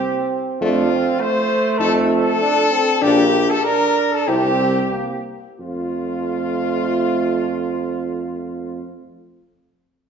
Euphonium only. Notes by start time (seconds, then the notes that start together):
Already playing: C4
0.61 D4
0.91 C4
1.19 A3
2.40 D4
2.71 C4
3.02 A#3
3.63 D4
4.27 C4
4.92 A#3
5.60 A3